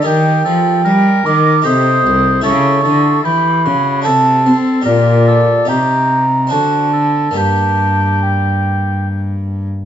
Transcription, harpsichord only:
X:1
M:3/4
L:1/16
Q:1/4=74
K:Gm
V:1 name="Harpsichord"
[EGB]8 [EGA]4 | [=EGA]8 [D^FA]4 | [DG]4 [EG]4 [CD^F]4 | [B,DG]12 |]
V:2 name="Harpsichord" clef=bass
E,2 F,2 G,2 E,2 C,2 C,,2 | ^C,2 D,2 =E,2 C,2 =C,2 C2 | B,,4 C,4 D,4 | G,,8- G,,3 z |]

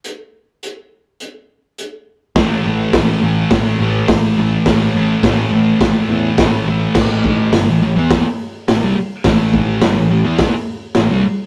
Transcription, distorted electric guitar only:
X:1
M:4/4
L:1/16
Q:1/4=104
K:C
V:1 name="Distorted electric guitar" clef=bass
z16 | [A,,E,A,]2 [A,,E,A,]2 [A,,E,A,]2 [A,,E,A,]2 [A,,E,A,]2 [A,,E,A,]2 [A,,E,A,]2 [A,,E,A,]2 | [A,,E,A,]2 [A,,E,A,]2 [A,,E,A,]2 [A,,E,A,]2 [A,,E,A,]2 [A,,E,A,]2 [A,,E,A,]2 [A,,E,A,]2 | [A,,E,A,]4 [G,,D,] [A,,E,] [A,,E,] [E,B,E]2 z3 [A,,E,] [C,G,] z2 |
[A,,E,A,]4 [G,,D,] [A,,E,] [A,,E,] [E,B,E]2 z3 [A,,E,] [C,G,] z2 |]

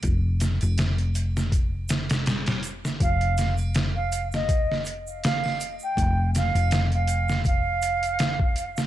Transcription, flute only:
X:1
M:4/4
L:1/16
Q:"Swing 16ths" 1/4=81
K:Ebmix
V:1 name="Flute"
z16 | f3 z2 f2 e3 z2 f3 g- | g2 f3 f3 f6- f z |]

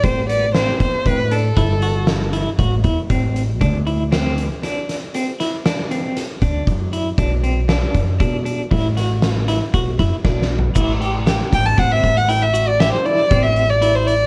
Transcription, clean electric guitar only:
X:1
M:7/4
L:1/8
Q:1/4=118
K:Ador
V:1 name="Clean electric guitar"
C B, C2 C D E F2 E F E C2 | D E C2 D2 C E D C2 D2 E | D C D2 D D E F2 E F E D2 | E G G2 C2 E F G E C2 E2 |]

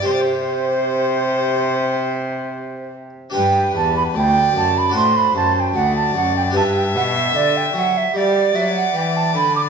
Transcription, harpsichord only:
X:1
M:4/4
L:1/16
Q:1/4=75
K:C
V:1 name="Harpsichord"
[EGc]16 | [K:G] [DGB]8 [DFA]8 | [DGB]16 |]
V:2 name="Harpsichord" clef=bass
C,12- C,3 z | [K:G] G,,2 E,,2 D,,2 F,,2 A,,2 F,,2 D,,2 F,,2 | G,,2 B,,2 D,2 F,2 G,2 F,2 E,2 D,2 |]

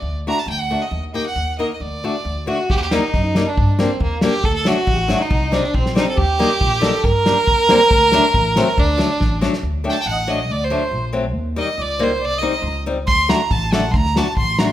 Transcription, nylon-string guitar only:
X:1
M:2/4
L:1/16
Q:1/4=138
K:none
V:1 name="Nylon-string guitar"
z2 [A,D^F] z3 [A,DF] z | z2 [_B,_EG] z3 [B,E_B] z | z2 [A,D^F] z3 [A,DF] z | z2 [G,_B,_E] z3 [G,B,E] z |
z2 [G,_B,D] z3 [G,B,D] z | z2 [^F,A,D] z3 [F,A,D] z | z2 [G,C_E] z3 [G,CD] z | z2 [G,_B,_E] z3 [G,B,E] z |
z2 [G,_B,D] z3 [G,B,C] z | z2 [^F,A,D] z3 [F,A,C] z | z2 [^F,A,D] z3 [F,A,D] z | z2 [^F,A,D] z3 [F,A,D] z |
z2 [^F,A,D] z3 [F,A,C] z | z2 [G,_B,_E] z3 [G,B,E] z | z2 [G,C_E] z3 [G,CE] z | z2 [A,D^F] z3 [A,DA] z |
z2 [A,D^F] z3 [A,DF] z |]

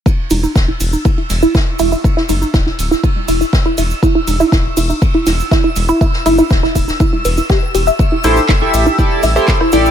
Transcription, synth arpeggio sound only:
X:1
M:4/4
L:1/16
Q:1/4=121
K:Ador
V:1 name="Synth arpeggio sound"
E z E E z E E z E E z E E z E E | z E E z E E z E E z E E z E E z | E E z E E z E E z E E z E E z E | E z E E z E E z E E B E G z G e |
z E E z E E z E E z E E z E E z |]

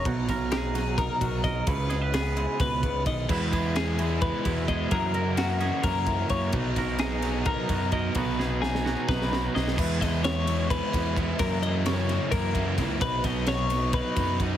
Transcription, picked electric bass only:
X:1
M:7/8
L:1/8
Q:1/4=130
K:B
V:1 name="Picked electric bass" clef=bass
B,,, B,,,4 B,,,2 | C,,4 C,,2 B,,, | E,, E,,4 E,,2 | F,,4 F,,2 F,, |
B,,, B,,,4 F,,2 | B,,,4 B,,,2 B,,, | E,, E,,4 E,,2 | F,,4 F,,2 C,, |
B,,, B,,,4 F,,2 |]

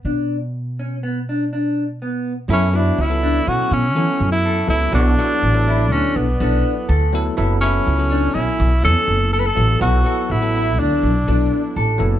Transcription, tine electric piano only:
X:1
M:5/4
L:1/16
Q:1/4=123
K:Bm
V:1 name="Tine electric piano"
z16 z4 | [F,B,EA]2 [F,B,EF]3 [F,B,EA]6 z [F,B,EA]4- [F,B,EA] z [F,B,EA]2 | [F,B,EA]2 [F,B,EA]3 [F,B,EA]6 z [F,B,EA]4- [F,B,EA] z [F,B,EA]2 | [F,B,EA]2 [F,B,EA]3 [F,B,EA]6 z [F,B,EA]4- [F,B,EA] z [F,B,EA]2 |
[F,B,EA]2 [F,B,EA]3 [F,B,EA]6 z [F,B,EA]4- [F,B,EA] z [F,B,EA]2 |]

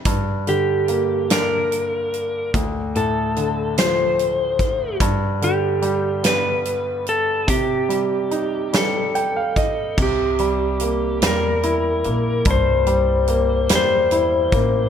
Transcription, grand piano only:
X:1
M:6/8
L:1/16
Q:3/8=48
K:Gm
V:1 name="Grand piano"
z12 | z12 | z12 | z8 g f e2 |
[K:Cmix] z12 | z12 |]
V:2 name="Grand piano" clef=bass
G,,2 D,2 B,2 D6 | D,,2 A,,2 D,2 F,6 | G,,2 D,2 G,2 =B,6 | C,2 G,2 E2 G,6 |
[K:Cmix] C,2 G,2 B,2 G,2 E2 B,2 | G,,2 G,2 B,2 G,2 E2 B,2 |]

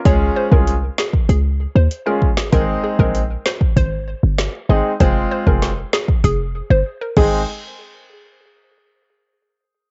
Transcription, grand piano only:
X:1
M:4/4
L:1/16
Q:1/4=97
K:Ab
V:1 name="Grand piano"
[A,DFA]3 [A,DFA] z8 z [A,DFA] z2 | [A,CEA]3 [A,CEA] z8 z2 [A,CEA] z | [A,CFA]3 [A,CFA] z8 z2 [A,CEA]2 | z16 |]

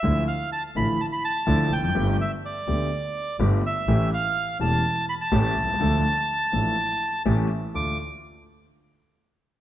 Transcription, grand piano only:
X:1
M:4/4
L:1/16
Q:1/4=125
K:Ddor
V:1 name="Grand piano" clef=bass
[D,,D,F,A,E]2 z4 [A,,,A,,D,F,A,E]2 z4 [D,,D,F,A,E]2 z/2 E,,/2 F,,/2 ^F,,/2 | [G,,,G,,D,A,B,G]2 z4 [D,,D,A,B,G]2 z4 [G,,,G,,D,A,B,G]2 z2 | [A,,,A,,E,A,^CG]2 z4 [E,,,E,,E,A,CG]2 z4 [A,,,A,,E,A,CG]2 z/2 B,,,/2 =C,,/2 ^C,,/2 | [D,,D,F,A,DA]2 z4 [A,,,A,,F,A,DA]2 z4 [A,,,A,,E,A,^CG]2 z2 |
[D,,A,DF]2 z12 z2 |]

